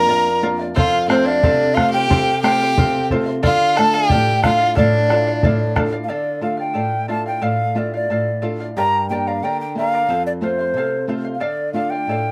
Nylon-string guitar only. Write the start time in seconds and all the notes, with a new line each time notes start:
Already playing: A#3 D4 F4
0.09 F2
0.43 A#3 D4 F4
0.76 F2
1.08 A3 C4 F4
1.44 C3
1.76 A3 C4 F4
2.10 C3
2.43 A3 C4 F4
2.77 C3
3.12 A3 C4 F4
3.45 D3
3.79 A3 D4 F4
4.12 A2
4.45 A3 D4 F4
4.78 A2
5.11 A3 D4 F4
5.44 A2
5.76 A3 D4 F4
6.10 D3
6.41 A3 D4 F4
6.75 A2
7.08 A3 D4 F4
7.42 A2
7.75 A3 D4 F4
8.10 A2
8.42 A3 D4 F4
8.77 G2
9.10 A#3 D4 G4
9.43 D3
9.75 A#3 D4 G4
10.09 F2
10.41 A3 C4 F4
10.74 C3
11.07 A3 C4 F4
11.41 D3
11.73 A3 D4 F4
12.07 A2